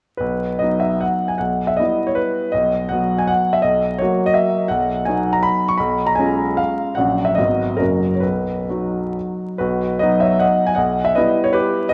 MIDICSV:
0, 0, Header, 1, 2, 480
1, 0, Start_track
1, 0, Key_signature, 5, "major"
1, 0, Tempo, 410959
1, 236, Time_signature, 3, 2, 24, 8
1, 1198, Tempo, 386100
1, 2638, Tempo, 363416
1, 7918, Tempo, 404585
1, 9838, Tempo, 427046
1, 10318, Tempo, 465116
1, 11278, Tempo, 431655
1, 12238, Tempo, 402955
1, 12718, Tempo, 371747
1, 14671, End_track
2, 0, Start_track
2, 0, Title_t, "Grand piano"
2, 0, Program_c, 0, 0
2, 204, Note_on_c, 0, 71, 57
2, 238, Note_on_c, 0, 35, 45
2, 482, Control_c, 0, 64, 127
2, 688, Note_on_c, 0, 75, 61
2, 707, Note_off_c, 0, 71, 0
2, 710, Note_off_c, 0, 35, 0
2, 719, Note_on_c, 0, 54, 33
2, 723, Note_on_c, 0, 59, 33
2, 729, Note_on_c, 0, 63, 35
2, 932, Note_on_c, 0, 76, 59
2, 950, Note_off_c, 0, 75, 0
2, 1175, Note_on_c, 0, 78, 62
2, 1181, Note_off_c, 0, 76, 0
2, 1211, Control_c, 0, 64, 0
2, 1515, Note_on_c, 0, 80, 59
2, 1542, Note_off_c, 0, 78, 0
2, 1620, Note_off_c, 0, 54, 0
2, 1623, Note_off_c, 0, 59, 0
2, 1626, Note_off_c, 0, 63, 0
2, 1638, Note_on_c, 0, 78, 65
2, 1653, Note_off_c, 0, 80, 0
2, 1661, Note_on_c, 0, 35, 42
2, 1906, Control_c, 0, 64, 127
2, 2001, Note_on_c, 0, 76, 58
2, 2017, Note_off_c, 0, 78, 0
2, 2117, Note_on_c, 0, 75, 58
2, 2138, Note_off_c, 0, 35, 0
2, 2142, Note_off_c, 0, 76, 0
2, 2152, Note_on_c, 0, 55, 34
2, 2154, Note_on_c, 0, 59, 35
2, 2158, Note_on_c, 0, 64, 40
2, 2174, Control_c, 0, 64, 0
2, 2490, Note_on_c, 0, 73, 58
2, 2502, Note_off_c, 0, 75, 0
2, 2594, Note_on_c, 0, 71, 62
2, 2622, Note_off_c, 0, 73, 0
2, 3059, Note_off_c, 0, 55, 0
2, 3060, Note_off_c, 0, 59, 0
2, 3063, Note_off_c, 0, 64, 0
2, 3079, Note_on_c, 0, 75, 64
2, 3092, Note_off_c, 0, 71, 0
2, 3112, Note_on_c, 0, 35, 47
2, 3315, Control_c, 0, 64, 127
2, 3567, Note_on_c, 0, 78, 65
2, 3585, Note_off_c, 0, 75, 0
2, 3587, Note_off_c, 0, 35, 0
2, 3602, Note_on_c, 0, 54, 36
2, 3613, Note_on_c, 0, 59, 37
2, 3613, Note_on_c, 0, 66, 40
2, 3960, Note_on_c, 0, 80, 72
2, 3966, Note_off_c, 0, 78, 0
2, 4078, Note_on_c, 0, 78, 74
2, 4090, Note_off_c, 0, 80, 0
2, 4119, Control_c, 0, 64, 0
2, 4413, Note_on_c, 0, 76, 68
2, 4429, Note_off_c, 0, 78, 0
2, 4500, Note_off_c, 0, 54, 0
2, 4505, Note_off_c, 0, 59, 0
2, 4506, Note_off_c, 0, 66, 0
2, 4534, Note_on_c, 0, 75, 71
2, 4539, Note_off_c, 0, 76, 0
2, 4557, Note_on_c, 0, 35, 50
2, 4771, Control_c, 0, 64, 127
2, 5015, Note_on_c, 0, 73, 64
2, 5026, Note_off_c, 0, 35, 0
2, 5029, Note_off_c, 0, 75, 0
2, 5044, Note_on_c, 0, 54, 39
2, 5053, Control_c, 0, 64, 0
2, 5060, Note_on_c, 0, 66, 43
2, 5061, Note_on_c, 0, 58, 38
2, 5380, Note_on_c, 0, 75, 74
2, 5397, Note_off_c, 0, 73, 0
2, 5485, Note_on_c, 0, 76, 69
2, 5511, Note_off_c, 0, 75, 0
2, 5917, Note_off_c, 0, 54, 0
2, 5925, Note_off_c, 0, 58, 0
2, 5925, Note_off_c, 0, 66, 0
2, 5940, Note_on_c, 0, 78, 70
2, 5946, Note_off_c, 0, 76, 0
2, 5972, Note_on_c, 0, 35, 51
2, 6202, Control_c, 0, 64, 127
2, 6429, Note_on_c, 0, 80, 73
2, 6435, Note_off_c, 0, 78, 0
2, 6437, Note_off_c, 0, 35, 0
2, 6458, Note_on_c, 0, 54, 41
2, 6461, Note_on_c, 0, 59, 39
2, 6466, Note_on_c, 0, 63, 42
2, 6789, Note_on_c, 0, 82, 73
2, 6810, Note_off_c, 0, 80, 0
2, 6920, Note_on_c, 0, 83, 84
2, 6924, Note_off_c, 0, 82, 0
2, 6951, Control_c, 0, 64, 0
2, 7262, Note_on_c, 0, 85, 73
2, 7280, Note_off_c, 0, 83, 0
2, 7357, Note_off_c, 0, 54, 0
2, 7358, Note_off_c, 0, 59, 0
2, 7361, Note_off_c, 0, 63, 0
2, 7382, Note_on_c, 0, 83, 71
2, 7392, Note_off_c, 0, 85, 0
2, 7407, Note_on_c, 0, 35, 52
2, 7627, Control_c, 0, 64, 127
2, 7765, Note_on_c, 0, 82, 78
2, 7769, Note_off_c, 0, 83, 0
2, 7882, Note_on_c, 0, 80, 70
2, 7904, Note_off_c, 0, 35, 0
2, 7910, Note_off_c, 0, 82, 0
2, 7919, Note_on_c, 0, 56, 39
2, 7923, Note_on_c, 0, 61, 41
2, 7928, Note_on_c, 0, 65, 42
2, 8382, Note_on_c, 0, 77, 74
2, 8387, Note_off_c, 0, 80, 0
2, 8419, Control_c, 0, 64, 0
2, 8812, Note_off_c, 0, 56, 0
2, 8814, Note_off_c, 0, 61, 0
2, 8816, Note_off_c, 0, 65, 0
2, 8830, Note_on_c, 0, 78, 68
2, 8848, Note_off_c, 0, 77, 0
2, 8859, Note_on_c, 0, 54, 38
2, 8860, Note_on_c, 0, 34, 52
2, 8865, Note_on_c, 0, 61, 34
2, 8869, Note_on_c, 0, 66, 34
2, 9074, Control_c, 0, 64, 127
2, 9184, Note_on_c, 0, 76, 64
2, 9205, Note_off_c, 0, 78, 0
2, 9299, Note_off_c, 0, 54, 0
2, 9302, Note_off_c, 0, 61, 0
2, 9304, Note_off_c, 0, 66, 0
2, 9304, Note_on_c, 0, 75, 66
2, 9328, Note_off_c, 0, 76, 0
2, 9332, Note_off_c, 0, 34, 0
2, 9333, Note_on_c, 0, 54, 34
2, 9334, Note_on_c, 0, 32, 49
2, 9335, Note_on_c, 0, 59, 36
2, 9344, Note_on_c, 0, 66, 34
2, 9363, Control_c, 0, 64, 0
2, 9593, Control_c, 0, 64, 127
2, 9782, Note_off_c, 0, 54, 0
2, 9784, Note_off_c, 0, 59, 0
2, 9788, Note_off_c, 0, 66, 0
2, 9801, Note_on_c, 0, 70, 61
2, 9816, Note_off_c, 0, 32, 0
2, 9816, Note_off_c, 0, 75, 0
2, 9828, Note_on_c, 0, 54, 34
2, 9830, Note_on_c, 0, 30, 48
2, 9833, Note_on_c, 0, 61, 35
2, 9843, Note_on_c, 0, 66, 34
2, 9849, Control_c, 0, 64, 0
2, 10078, Control_c, 0, 64, 127
2, 10213, Note_off_c, 0, 70, 0
2, 10232, Note_on_c, 0, 73, 41
2, 10267, Note_off_c, 0, 54, 0
2, 10270, Note_off_c, 0, 61, 0
2, 10275, Note_off_c, 0, 66, 0
2, 10292, Note_on_c, 0, 71, 53
2, 10299, Note_off_c, 0, 30, 0
2, 10318, Note_off_c, 0, 73, 0
2, 10320, Note_on_c, 0, 35, 42
2, 10325, Control_c, 0, 64, 0
2, 10551, Control_c, 0, 64, 127
2, 10782, Note_off_c, 0, 35, 0
2, 10799, Note_on_c, 0, 54, 35
2, 10807, Note_on_c, 0, 63, 34
2, 10811, Note_on_c, 0, 66, 36
2, 11266, Note_off_c, 0, 71, 0
2, 11289, Control_c, 0, 64, 0
2, 11727, Note_off_c, 0, 54, 0
2, 11731, Note_off_c, 0, 63, 0
2, 11734, Note_off_c, 0, 66, 0
2, 11749, Note_on_c, 0, 71, 59
2, 11758, Note_on_c, 0, 66, 48
2, 11769, Note_on_c, 0, 35, 50
2, 11979, Control_c, 0, 64, 127
2, 12198, Note_off_c, 0, 66, 0
2, 12204, Note_off_c, 0, 71, 0
2, 12206, Note_on_c, 0, 75, 68
2, 12221, Note_on_c, 0, 71, 54
2, 12223, Note_off_c, 0, 35, 0
2, 12235, Note_on_c, 0, 54, 44
2, 12235, Note_on_c, 0, 63, 50
2, 12240, Note_on_c, 0, 59, 43
2, 12453, Note_on_c, 0, 76, 68
2, 12457, Note_off_c, 0, 71, 0
2, 12466, Note_on_c, 0, 73, 49
2, 12467, Note_off_c, 0, 75, 0
2, 12681, Note_on_c, 0, 78, 67
2, 12690, Note_off_c, 0, 73, 0
2, 12694, Note_on_c, 0, 75, 55
2, 12700, Note_off_c, 0, 76, 0
2, 12731, Control_c, 0, 64, 0
2, 13029, Note_on_c, 0, 80, 73
2, 13037, Note_off_c, 0, 75, 0
2, 13056, Note_off_c, 0, 78, 0
2, 13134, Note_on_c, 0, 78, 73
2, 13139, Note_off_c, 0, 54, 0
2, 13139, Note_off_c, 0, 63, 0
2, 13142, Note_off_c, 0, 59, 0
2, 13151, Note_on_c, 0, 75, 52
2, 13168, Note_off_c, 0, 80, 0
2, 13170, Note_on_c, 0, 35, 52
2, 13414, Control_c, 0, 64, 127
2, 13503, Note_off_c, 0, 75, 0
2, 13520, Note_on_c, 0, 76, 70
2, 13521, Note_off_c, 0, 78, 0
2, 13650, Note_off_c, 0, 35, 0
2, 13657, Note_on_c, 0, 75, 65
2, 13660, Note_off_c, 0, 76, 0
2, 13666, Note_on_c, 0, 71, 51
2, 13687, Note_on_c, 0, 55, 48
2, 13687, Note_on_c, 0, 59, 45
2, 13690, Control_c, 0, 64, 0
2, 13690, Note_on_c, 0, 64, 49
2, 14015, Note_off_c, 0, 71, 0
2, 14027, Note_on_c, 0, 73, 70
2, 14037, Note_off_c, 0, 75, 0
2, 14143, Note_on_c, 0, 71, 76
2, 14158, Note_off_c, 0, 73, 0
2, 14160, Note_on_c, 0, 67, 58
2, 14592, Note_off_c, 0, 55, 0
2, 14592, Note_off_c, 0, 59, 0
2, 14594, Note_off_c, 0, 64, 0
2, 14601, Note_off_c, 0, 67, 0
2, 14610, Note_off_c, 0, 71, 0
2, 14614, Note_on_c, 0, 75, 82
2, 14630, Note_on_c, 0, 71, 56
2, 14671, Note_off_c, 0, 71, 0
2, 14671, Note_off_c, 0, 75, 0
2, 14671, End_track
0, 0, End_of_file